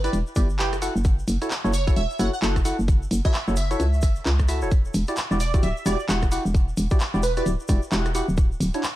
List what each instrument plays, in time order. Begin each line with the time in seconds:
0.04 synth stab E4 G4 B4 D5, digital synth lead B4, closed hi-hat, shaker
0.13 fm bass E1, closed hi-hat, shaker
0.27 shaker
0.36 fm bass G1, synth stab E4 G4 B4 D5, kick, cross-stick, open hi-hat, shaker
0.49 shaker
0.59 fm bass F#1, synth stab E4 G4 B4 G5, clap, shaker
0.73 cross-stick, closed hi-hat, shaker
0.82 synth stab E4 F#4 A4 F#5, open hi-hat, shaker
0.96 fm bass F#1, shaker
1.04 kick, closed hi-hat, shaker
1.19 shaker
1.28 fm bass F#1, open hi-hat, shaker
1.42 synth stab E4 F#4 A4 C#5, closed hi-hat, shaker
1.51 clap, closed hi-hat, shaker
1.64 fm bass F#1, synth stab E4 F#4 A4 C#5, shaker
1.73 digital synth lead C#5, open hi-hat, shaker
1.87 synth stab E4 F#4 A4 C#5, kick, closed hi-hat, shaker
1.96 fm bass E1, digital synth lead E5, closed hi-hat, shaker
2.10 shaker
2.19 fm bass F#1, synth stab E4 F#4 A4 C#5, digital synth lead F#5, cross-stick, open hi-hat, shaker
2.33 digital synth lead F#5, shaker
2.42 fm bass F#1, synth stab E4 F#4 A4 F#5, clap, shaker
2.56 kick, cross-stick, closed hi-hat, shaker
2.65 synth stab E4 F#4 A4 F#5, open hi-hat, shaker
2.79 fm bass F#1, shaker
2.88 kick, closed hi-hat, shaker
3.02 shaker
3.11 fm bass F#1, open hi-hat, shaker
3.25 synth stab E4 F#4 A4 C#5, digital synth lead E5, kick, closed hi-hat, shaker
3.34 clap, closed hi-hat, shaker
3.48 fm bass F#1, synth stab E4 F#4 A4 C#5, shaker
3.56 digital synth lead E5, open hi-hat, shaker
3.71 synth stab E4 F#4 A4 C#5, closed hi-hat, shaker
3.80 fm bass C#2, closed hi-hat, shaker
3.93 shaker
4.02 fm bass F#1, kick, cross-stick, open hi-hat, shaker
4.16 shaker
4.26 fm bass C#2, clap, shaker
4.39 kick, cross-stick, closed hi-hat, shaker
4.48 synth stab E4 F#4 A4 E5, cross-stick, open hi-hat, shaker
4.61 fm bass E1, synth stab E4 F#4 A4 C#5, shaker
4.71 kick, closed hi-hat, shaker
4.85 shaker
4.94 fm bass E1, open hi-hat, shaker
5.07 synth stab E4 F#4 G4 D5, closed hi-hat, shaker
5.16 clap, closed hi-hat, shaker
5.31 fm bass E1, synth stab E4 F#4 G4 D5, shaker
5.40 digital synth lead D5, open hi-hat, shaker
5.54 synth stab E4 F#4 G4 D5, kick, closed hi-hat, shaker
5.63 fm bass D1, digital synth lead E5, closed hi-hat, shaker
5.77 shaker
5.86 fm bass E1, synth stab E4 F#4 G4 D5, digital synth lead D5, cross-stick, open hi-hat, shaker
5.99 shaker
6.09 fm bass E1, synth stab E4 F#4 G4 F#5, clap, shaker
6.22 kick, cross-stick, closed hi-hat, shaker
6.32 synth stab E4 F#4 G4 F#5, open hi-hat, shaker
6.45 fm bass E1, shaker
6.54 kick, closed hi-hat, shaker
6.68 shaker
6.77 fm bass E1, open hi-hat, shaker
6.90 synth stab E4 F#4 G4 D5, kick, closed hi-hat, shaker
7.00 clap, closed hi-hat, shaker
7.14 fm bass E1, synth stab E4 F#4 G4 D5, shaker
7.23 digital synth lead B4, open hi-hat, shaker
7.37 synth stab E4 F#4 G4 D5, digital synth lead B4, closed hi-hat, shaker
7.46 fm bass D1, closed hi-hat, shaker
7.60 shaker
7.68 fm bass E1, synth stab E4 F#4 G4 D5, kick, cross-stick, open hi-hat, shaker
7.82 shaker
7.92 fm bass E1, synth stab E4 F#4 G4 F#5, clap, shaker
8.05 cross-stick, closed hi-hat, shaker
8.15 synth stab E4 F#4 G4 F#5, open hi-hat, shaker
8.28 fm bass D1, shaker
8.37 kick, closed hi-hat, shaker
8.52 shaker
8.60 fm bass D1, open hi-hat, shaker
8.74 synth stab D4 E4 F#4 C#5, closed hi-hat, shaker
8.83 clap, closed hi-hat, shaker